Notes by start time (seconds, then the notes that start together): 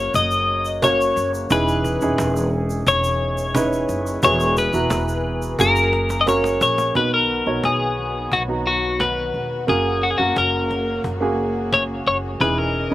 Already playing: F#1 A#3 C#4 F#4 A#4 C#5
0.14 F#1 D#5, cajon bass, shaker
0.31 shaker
0.48 cajon slap
0.65 shaker
0.82 A#3 C#4 F#4 C#5, cajon bass, cajon slap, shaker
1.01 shaker
1.16 F#1, cajon bass, cajon slap, shaker
1.34 shaker
1.50 E1 E3 C#4 D#4 E4 G#4 B4, cajon bass, shaker
1.68 shaker
1.84 cajon bass, cajon slap, shaker
2.01 E1 C#4 D#4 E4 G#4, shaker
2.18 E1, cajon bass, cajon slap, shaker
2.36 shaker
2.53 cajon slap
2.70 shaker
2.87 E1 C#5, cajon bass, shaker
3.04 shaker
3.21 cajon slap
3.38 shaker
3.54 C#4 D#4 E4 B4, cajon bass, cajon slap, shaker
3.73 shaker
3.89 F#1, cajon bass, cajon slap, shaker
4.07 shaker
4.23 E1 E3 B3 E4 F#4 G#4 C#5, cajon bass, shaker
4.40 shaker
4.57 B4, cajon bass, cajon slap, shaker
4.73 E1 B3 E4 F#4 A#5, shaker
4.90 E1, cajon bass, cajon slap, shaker
5.08 shaker
5.25 cajon slap
5.42 shaker
5.59 F#1 A#3 C#4 F#4 G#4 A#4, cajon bass, cajon slap, shaker
5.76 cajon slap, shaker
5.93 cajon slap
6.10 cajon slap, shaker
6.21 D#5
6.26 A#3 C#4 F#4 A#4 C#5, cajon bass, cajon slap, shaker
6.44 cajon slap, shaker
6.61 A#1 C#5, cajon slap, shaker
6.78 cajon slap, shaker
6.95 B1 B2 D#3 B3 D#4 F#4 B4, cajon bass
7.14 A#4
7.30 cajon slap
7.46 B1 B3 D#4 F#4 C#5
7.63 B1 G#4, cajon bass, cajon slap
7.98 cajon slap
8.32 B1 F#4, cajon bass
8.48 B3 D#4 F#4 A#5
8.67 F#4
9.00 B4, cajon bass, cajon slap
9.34 E1, cajon slap
9.51 cajon slap
9.67 F#1 C#3 A#3 C#4 F#4 G#4 A#4, cajon bass
10.03 F#4, cajon slap
10.11 G#4
10.18 F#1 A#3 C#4 F#4 A#4
10.36 F#1 A#4, cajon bass, cajon slap
10.71 cajon bass, cajon slap
11.04 F#1, cajon bass
11.20 A#3 C#4 F#4 G#4
11.39 cajon slap
11.72 C#5, cajon bass, cajon slap
12.07 F#1 C#5, cajon bass, cajon slap
12.23 cajon slap
12.40 E1 C#3 E3 C#4 D#4 E4 G#4 B4 D#5, cajon bass
12.58 A#4
12.75 cajon slap
12.90 C#4 D#4